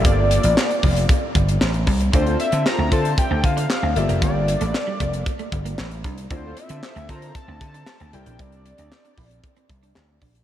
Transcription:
<<
  \new Staff \with { instrumentName = "Analog synth lead" } { \time 4/4 \key g \dorian \tempo 4 = 115 d''2. r4 | c''8 e''8 bes''8 a''8 g''8 f''4 e''8 | d''2. r4 | c''8 e''4 bes''8 a''4. g''8 |
d''2. r4 | }
  \new Staff \with { instrumentName = "Analog polysynth" } { \time 4/4 \key g \dorian r1 | r16 <f' a' c''>16 r8 <f' a' c''>16 r16 <f' a' c''>8 r2 | r1 | r16 <f' a' c''>16 r8 <f' a' c''>16 r16 <f' a' c''>8 r2 |
r1 | }
  \new Staff \with { instrumentName = "Grand piano" } { \time 4/4 \key g \dorian <bes f' g' a' d''>2.~ <bes f' g' a' d''>8 r8 | <c' d' f' a' d''>2.~ <c' d' f' a' d''>8 <bes f' g' a' d''>8~ | <bes f' g' a' d''>2.~ <bes f' g' a' d''>8 r8 | <c' e' f' a' d''>2.~ <c' e' f' a' d''>8 <c' e' g' bes' d''>8~ |
<c' e' g' bes' d''>2.~ <c' e' g' bes' d''>8 r8 | }
  \new Staff \with { instrumentName = "Clean electric guitar" } { \time 4/4 \key g \dorian r1 | d'16 r8 c'16 r16 a16 c'16 r8 c'16 r16 d'16 r16 c'16 r16 bes16 | g16 r8 a16 r16 g16 a16 r8 a16 r16 bes16 r8 d'16 r16 | d'16 r8 c'16 r16 a16 c'16 r8 c'16 r16 d'16 r16 c'16 r16 d'16 |
c'16 r8 d'16 r16 d'16 e'16 r8 c'16 r16 d'16 r8 d'16 r16 | }
  \new Staff \with { instrumentName = "Slap bass" } { \clef bass \time 4/4 \key g \dorian g,,8. a,,16 r8 f,,8 r8 g,,8 a,,8 c,8 | d,8 r16 d16 r16 d,16 d8 r16 d,16 d8 r16 d,16 g,,16 f,,16 | g,,8. a,,16 r8 f,,8 r8 g,,8 a,,8 c,8 | d,8 r16 d16 r16 d,16 d8 r16 d,16 d8 r16 d,16 c,16 bes,,16 |
c,8. d,16 r8 bes,,8 r8 c,8 d,8 bes,,8 | }
  \new DrumStaff \with { instrumentName = "Drums" } \drummode { \time 4/4 <hh bd>8 hh16 hh16 <hc sn>16 hh16 <hho bd>16 hh16 <hh bd>8 <hh bd>16 hh16 <hc sn>16 hh16 <hho bd>16 hh16 | <hh bd>16 hh16 hh16 hh16 <hc sn>8 <hh bd>16 hh16 <hh bd>8 <hh bd>16 hh16 <hc sn>8 hh16 hh16 | <hh bd>8 hh16 hh16 <hc sn>8 <hh bd>16 hh16 <hh bd>16 hh16 <hh bd>16 hh16 <hc sn>16 hh16 <hh bd>16 hh16 | <hh bd>8 hh16 hh16 <hc sn>16 hh16 <hh bd>16 hh16 <hh bd>8 <hh bd>16 hh16 <hc sn>16 hh16 hh16 hh16 |
<hh bd>16 hh16 hh16 hh16 <hc sn>16 hh16 <hho bd>16 hh16 <hh bd>16 hh16 <hh bd>16 hh16 <hc sn>8 <hho bd>16 hh16 | }
>>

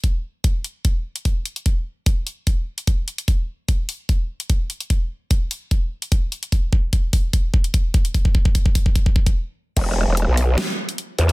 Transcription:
<<
  \new Staff \with { instrumentName = "Wobble bass" } { \clef bass \time 4/4 \key c \lydian \tempo 4 = 148 r1 | r1 | r1 | r1 |
r1 | r1 | e,,8. e,,8 b,,8. r4. e,8 | }
  \new DrumStaff \with { instrumentName = "Drums" } \drummode { \time 4/4 <hh bd>4 <hh bd>8 hh8 <hh bd>8. hh16 <hh bd>8 hh16 hh16 | <hh bd>4 <hh bd>8 hh8 <hh bd>8. hh16 <hh bd>8 hh16 hh16 | <hh bd>4 <hh bd>8 hho8 <hh bd>8. hh16 <hh bd>8 hh16 hh16 | <hh bd>4 <hh bd>8 hho8 <hh bd>8. hh16 <hh bd>8 hh16 hh16 |
<hh bd>8 bd8 <hh bd>8 <hho bd>8 <hh bd>8 bd16 hh16 <hh bd>8 <hh bd>16 hh16 | <hh bd>16 bd16 bd16 bd16 <hh bd>16 bd16 <hho bd>16 bd16 <hh bd>16 bd16 bd16 <hh bd>16 r4 | <cymc hh bd>4 hh8 hho8 <hh sn>8. hh16 hh8 hh8 | }
>>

